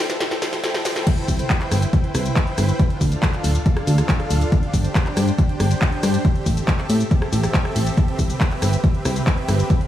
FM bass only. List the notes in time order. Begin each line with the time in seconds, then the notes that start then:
1.28 C2
1.72 G1
2.15 C2
2.58 G1
3.01 D2
3.44 D1
3.87 D2
4.31 D1
4.74 G1
5.17 G2
5.60 G1
6.03 G2
6.46 A1
6.90 A2
7.33 A1
7.76 A1
8.19 C2
8.62 G1
9.05 C2
9.49 G1